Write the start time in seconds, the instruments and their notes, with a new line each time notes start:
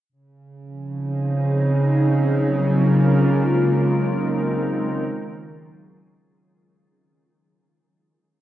0.09 ambient pad C#3, synth drone C#3
0.57 ambient pad F3
0.79 ambient pad C4 D#4 G#4
2.17 ambient pad F#3 F4
2.35 ambient pad A#3 A#4
3.28 ambient pad G#3
3.68 ambient pad D#4
3.88 ambient pad C4
4.72 ambient pad D#3
5.19 ambient pad F4
5.29 ambient pad F#3
5.40 ambient pad C#4 G#4